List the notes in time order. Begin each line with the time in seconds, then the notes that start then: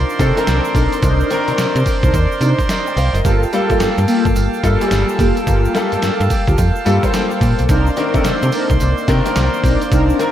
Already playing: D#3 C4 D4 F4 A#4 C5 D5 C6
0.09 shaker
0.19 C3 D#3 C4 D4 A4, kick, closed hi-hat, tambourine, shaker
0.36 D#3 C4 D4 A#4, closed hi-hat, shaker
0.47 C2, snare, closed hi-hat, tambourine, shaker
0.65 shaker
0.75 B1 D4 D#4 A#4 C5, kick, open hi-hat, tambourine, shaker
0.92 closed hi-hat, shaker
1.02 C2 D4 D#4 A#4 C5, kick, closed hi-hat, tambourine, shaker
1.20 shaker
1.30 D#3 C4 D4 A#4, closed hi-hat, shaker
1.48 C3 D#3 C4 D4 A#4, closed hi-hat, shaker
1.58 C3, snare, closed hi-hat, tambourine, shaker
1.76 C3, shaker
1.86 kick, open hi-hat, tambourine, shaker
2.03 C2 D4 D#4 A#4 C5, kick, closed hi-hat, shaker
2.14 D#2, kick, closed hi-hat, tambourine, shaker
2.32 shaker
2.41 C3 D4 D#4 A#4 C5, closed hi-hat, tambourine, shaker
2.59 kick, closed hi-hat, shaker
2.69 A#4 D#5, snare, closed hi-hat, tambourine, shaker
2.87 D5 G5, shaker
2.97 C2 C5 F5, open hi-hat, tambourine, shaker
3.14 F#1 A#4 D#5, closed hi-hat, shaker
3.24 G1 A#3 F4 G4 A4 F5 G5 A5, kick, closed hi-hat, tambourine, shaker
3.43 shaker
3.53 G3 A#3 F4 A4, closed hi-hat, shaker
3.69 G2 G3 A#3 F4 G4 A4, kick, closed hi-hat, shaker
3.80 G2, snare, closed hi-hat, tambourine, shaker
3.98 G2, shaker
4.07 A#3 F4 G4 A4, open hi-hat, tambourine, shaker
4.25 G1, kick, closed hi-hat, shaker
4.36 G1, closed hi-hat, tambourine, shaker
4.54 shaker
4.63 G2 G3 A#3 F4 A4, kick, closed hi-hat, tambourine, shaker
4.80 G3 A#3 F4 G#4, closed hi-hat, shaker
4.88 G1 A4, snare, closed hi-hat, tambourine, shaker
5.09 shaker
5.19 F#1 A#3 F4 G4 A4, kick, open hi-hat, tambourine, shaker
5.37 closed hi-hat, shaker
5.47 G1 A#3 F4 G4 A4, kick, closed hi-hat, tambourine, shaker
5.65 shaker
5.74 G3 A#3 F4 A4, snare, closed hi-hat, shaker
5.91 G2 G3 A#3 F4 A4, closed hi-hat, shaker
6.02 G2, snare, closed hi-hat, tambourine, shaker
6.20 G2, shaker
6.30 kick, open hi-hat, tambourine, shaker
6.47 D2 A#3 F4 G4 A4, kick, closed hi-hat, shaker
6.58 F2, kick, closed hi-hat, tambourine, shaker
6.76 shaker
6.85 G2 G3 A#3 F4 G4 A4, closed hi-hat, tambourine, shaker
7.03 G3 A#3 F4 C5, kick, closed hi-hat, shaker
7.14 snare, closed hi-hat, tambourine, shaker
7.31 shaker
7.41 A#2, kick, open hi-hat, tambourine, shaker
7.59 B1, closed hi-hat, shaker
7.69 C2 A#3 C4 D4 D#4 A#4 C5 D5 C6, kick, closed hi-hat, tambourine, shaker
7.87 shaker
7.97 D#3 C4 D4 A#4, closed hi-hat, shaker
8.14 C3 D#3 C4 D4 D#4 A4 A#4, kick, closed hi-hat, shaker
8.24 C3, snare, closed hi-hat, tambourine, shaker
8.42 C3, shaker
8.52 C4 D4 D#4 A#4, open hi-hat, tambourine, shaker
8.70 C2, kick, closed hi-hat, shaker
8.80 C2, closed hi-hat, tambourine, shaker
8.98 shaker
9.08 C3 D#3 C4 D4 A#4, kick, closed hi-hat, tambourine, shaker
9.26 D#3 C4 D4 A#4, closed hi-hat, shaker
9.36 C2, snare, closed hi-hat, tambourine, shaker
9.54 shaker
9.64 B1 C4 D4 D#4 A#4, kick, open hi-hat, tambourine, shaker
9.81 closed hi-hat, shaker
9.92 C2 C4 D4 D#4 A#4, kick, closed hi-hat, tambourine, shaker
10.10 shaker
10.19 D#3 C4 D4 A#4, closed hi-hat, shaker